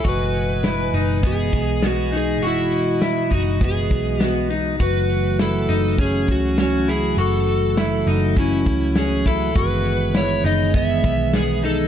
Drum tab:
HH |xxxxxxxx|xxxxxxxx|xxxxxxxx|xxxxxxxx|
SD |--o---o-|--o---o-|--o---o-|--o---o-|
BD |o---oo--|---ooo--|o---oo--|----oo-o|

HH |xxxxxxxx|
SD |--o---o-|
BD |o---oo--|